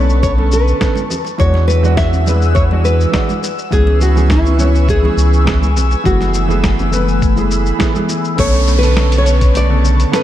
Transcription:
Already playing: analog synth bass B1, grand piano D3 B3 C#4 C#5, analog synth pad B4 A5 C#6, nylon-string guitar D5
0.10 shaker
0.23 nylon-string guitar C#5, kick, shaker
0.37 grand piano D3 B3 C#4 A4, high conga
0.52 nylon-string guitar B4, shaker
0.68 shaker
0.80 grand piano D3 B3 C#4 A4, kick, snare, shaker
0.95 high conga, shaker
1.10 low conga, shaker
1.25 muted conga, shaker
1.38 analog synth bass E2, grand piano E3 G#3 D4 F#4, analog synth pad G#4 F#5 E6, nylon-string guitar C#5, kick, high conga, shaker
1.54 snare, muted conga
1.68 nylon-string guitar B4, muted conga, shaker
1.83 grand piano E3 G#3 D4 F#4, high conga, shaker
1.97 nylon-string guitar E5, kick, snare, shaker
2.13 low conga, shaker
2.26 grand piano E3 G#3 D4 B4, high conga, low conga, shaker
2.42 shaker
2.55 nylon-string guitar C#5, kick, shaker
2.71 grand piano E3 G#3 D4 F#4, high conga
2.85 nylon-string guitar B4, shaker
3.01 shaker
3.12 grand piano E3 G#3 D4 F#4, kick, snare, shaker
3.29 high conga, shaker
3.43 analog synth pad B4 G#5 C#6 E6, muted conga, shaker
3.59 shaker
3.70 analog synth bass C#2, grand piano E3 B3 C#4 G#4, nylon-string guitar G#4, kick, high conga, shaker
3.87 muted conga
4.01 nylon-string guitar F#4, muted conga, shaker
4.15 grand piano E3 B3 C#4 G#4, high conga, shaker
4.30 nylon-string guitar E4, kick, snare, shaker
4.45 low conga, shaker
4.58 grand piano E3 B3 C#4 C#5, high conga, low conga, shaker
4.75 shaker
4.89 nylon-string guitar G#4, kick, shaker
5.02 grand piano E3 B3 C#4 G#4, high conga
5.17 analog synth bass C#2, shaker
5.33 shaker
5.45 grand piano E3 B3 C#4 G#4, kick, snare, shaker
5.63 high conga, shaker
5.76 analog synth bass B1, low conga, shaker
5.91 muted conga, shaker
6.04 analog synth bass F#1, grand piano E3 A3 B3 G#4, analog synth pad A3 B5, nylon-string guitar F#4, kick, high conga, shaker
6.21 snare, muted conga, shaker
6.34 muted conga, shaker
6.48 grand piano E3 A3 B3 G#4, high conga, shaker
6.64 kick, snare, shaker
6.79 low conga, shaker
6.91 grand piano E3 A3 B3 B4, high conga, low conga, shaker
7.08 shaker
7.22 kick, shaker
7.36 grand piano E3 A3 B3 G#4, high conga, shaker
7.51 shaker
7.66 shaker
7.79 grand piano E3 A3 B3 G#4, kick, snare, shaker
7.93 grand piano E3 A3 B3 G#4, high conga, shaker
8.09 muted conga, shaker
8.25 shaker
8.36 analog synth bass B1, grand piano D3 B3 C#4 A4, harp A3, analog synth pad B4 A5 C#6, nylon-string guitar C#5, kick, closed hi-hat, downlifter, shaker
8.54 harp A3
8.67 harp A3, shaker
8.79 grand piano D3 B3 C#4, nylon-string guitar B4
8.83 grand piano A4, closed hi-hat, shaker
8.97 snare, shaker
9.11 harp B3, closed hi-hat, shaker
9.18 nylon-string guitar C#5
9.24 grand piano D3 B3 C#4 C#5, closed hi-hat, shaker
9.41 harp C#4, kick, closed hi-hat, shaker
9.54 harp A3, nylon-string guitar D5, closed hi-hat, shaker
9.69 grand piano C#3 D3 B3 A4, harp A3
9.83 harp A3, shaker
10.00 closed hi-hat, shaker
10.11 grand piano D3 B3 C#4 A4, nylon-string guitar B4, snare, closed hi-hat, shaker

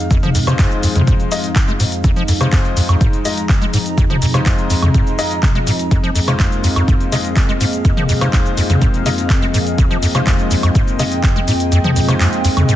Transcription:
Already playing: analog synth pad F2 F3 G#3 D#4, ambient pad C4 G#4 D#5 F5
0.11 acid bass F2, kick, closed hi-hat, shaker
0.23 acid bass F3, closed hi-hat, mid tom, shaker
0.35 acid bass F2, open hi-hat, shaker
0.47 acid bass C3, grand piano G#3 D#4 F4 C5, high woodblock, shaker
0.59 acid bass F2, kick, clap, closed hi-hat, shaker
0.71 closed hi-hat, shaker
0.83 acid bass F2, open hi-hat, shaker
0.96 acid bass F2, closed hi-hat, mid tom, shaker
1.07 acid bass G#2, kick, closed hi-hat, shaker
1.20 closed hi-hat, shaker
1.32 grand piano G#3 D#4 F4 D#5, open hi-hat, shaker
1.44 closed hi-hat, shaker
1.56 kick, clap, closed hi-hat, shaker
1.68 acid bass G#3, closed hi-hat, shaker
1.80 acid bass G#2, open hi-hat, shaker
1.92 closed hi-hat, shaker
2.04 acid bass F2, kick, closed hi-hat, shaker
2.16 acid bass F3, closed hi-hat, shaker
2.28 acid bass F2, open hi-hat, shaker
2.41 acid bass C3, grand piano G#3 D#4 F4 C5, closed hi-hat, high woodblock, shaker
2.50 acid bass F2, ambient pad A#5, kick, clap, closed hi-hat, shaker
2.65 closed hi-hat, shaker
2.77 acid bass F2, open hi-hat, shaker
2.89 acid bass F2, closed hi-hat, high woodblock, shaker
3.01 acid bass G#2, kick, closed hi-hat, shaker
3.13 closed hi-hat, shaker
3.25 grand piano G#3 D#4 F4 D#5, open hi-hat, shaker
3.38 closed hi-hat, shaker
3.49 kick, clap, closed hi-hat, shaker
3.62 acid bass G#3, closed hi-hat, shaker
3.74 acid bass G#2, open hi-hat, shaker
3.86 closed hi-hat, shaker
3.98 acid bass F2, kick, closed hi-hat, shaker
4.10 acid bass F3, closed hi-hat, mid tom, shaker
4.22 acid bass F2, open hi-hat, shaker
4.34 acid bass C3, grand piano G#3 D#4 F4 C5, closed hi-hat, high woodblock, shaker
4.46 acid bass F2, kick, clap, closed hi-hat, shaker
4.58 closed hi-hat, shaker
4.70 acid bass F2, open hi-hat, shaker
4.82 acid bass F2, closed hi-hat, mid tom, high woodblock, shaker
4.94 acid bass G#2, kick, closed hi-hat, shaker
5.07 closed hi-hat, shaker
5.19 grand piano G#3 D#4 F4 D#5, open hi-hat, shaker
5.31 closed hi-hat, shaker
5.43 kick, clap, closed hi-hat, mid tom, shaker
5.55 acid bass G#3, closed hi-hat, shaker
5.67 acid bass G#2, open hi-hat, shaker
5.79 closed hi-hat, shaker
5.91 acid bass F2, analog synth pad A#3, kick, closed hi-hat, shaker
6.04 acid bass F3, closed hi-hat, shaker
6.15 acid bass F2, open hi-hat, shaker
6.28 acid bass C3, grand piano G#3 D#4 F4 C5, closed hi-hat, high woodblock, shaker
6.37 acid bass F2, ambient pad F5, kick, clap, closed hi-hat, shaker
6.52 closed hi-hat, shaker
6.64 acid bass F2, open hi-hat, shaker
6.76 acid bass F2, closed hi-hat, high woodblock, shaker
6.88 acid bass G#2, kick, closed hi-hat, shaker
7.00 closed hi-hat, shaker
7.12 acid bass C3, grand piano G#3 D#4 F4 D#5, open hi-hat, shaker
7.25 closed hi-hat, shaker
7.36 kick, clap, closed hi-hat, shaker
7.49 acid bass G#3, closed hi-hat, shaker
7.61 acid bass G#2, open hi-hat, shaker
7.73 closed hi-hat, shaker
7.85 acid bass F2, kick, closed hi-hat, shaker
7.97 acid bass F3, closed hi-hat, mid tom, shaker
8.09 acid bass F2, open hi-hat, shaker
8.21 acid bass C3, grand piano G#3 D#4 F4 C5, closed hi-hat, high woodblock, shaker
8.33 acid bass F2, kick, clap, closed hi-hat, shaker
8.46 closed hi-hat, shaker
8.57 acid bass F2, open hi-hat, shaker
8.70 acid bass F2, closed hi-hat, mid tom, shaker
8.82 acid bass G#2, kick, closed hi-hat, shaker
8.94 closed hi-hat, shaker
9.06 acid bass C3, grand piano G#3 D#4 F4 D#5, open hi-hat, shaker
9.18 closed hi-hat, shaker
9.30 kick, clap, closed hi-hat, shaker
9.42 acid bass G#3, closed hi-hat, shaker
9.54 acid bass G#2, open hi-hat, shaker
9.67 closed hi-hat, shaker
9.78 acid bass F2, kick, closed hi-hat, shaker
9.91 acid bass F3, closed hi-hat, shaker
10.03 acid bass F2, open hi-hat, shaker
10.15 acid bass C3, grand piano G#3 D#4 F4 C5, closed hi-hat, high woodblock, shaker
10.24 acid bass F2, ambient pad G5, kick, clap, closed hi-hat, shaker
10.39 closed hi-hat, shaker
10.51 acid bass F2, open hi-hat, shaker
10.63 acid bass F2, closed hi-hat, high woodblock, shaker
10.75 acid bass G#2, kick, closed hi-hat, shaker
10.88 closed hi-hat, shaker
10.99 acid bass C3, grand piano G#3 D#4 F4 D#5, open hi-hat, shaker
11.12 closed hi-hat, shaker
11.24 kick, clap, closed hi-hat, shaker
11.36 acid bass G#3, closed hi-hat, shaker
11.48 acid bass G#2, open hi-hat, shaker
11.60 closed hi-hat, shaker
11.72 acid bass F2, closed hi-hat, shaker
11.84 acid bass F3, closed hi-hat, mid tom, shaker
11.96 acid bass F2, open hi-hat, shaker
12.08 acid bass C3, grand piano G#3 D#4 F4 C5, closed hi-hat, high woodblock, shaker
12.20 acid bass F2, clap, closed hi-hat, shaker
12.33 closed hi-hat, shaker
12.45 acid bass F2, open hi-hat, shaker
12.57 acid bass F2, closed hi-hat, mid tom, high woodblock, shaker
12.69 acid bass G#2, closed hi-hat, shaker

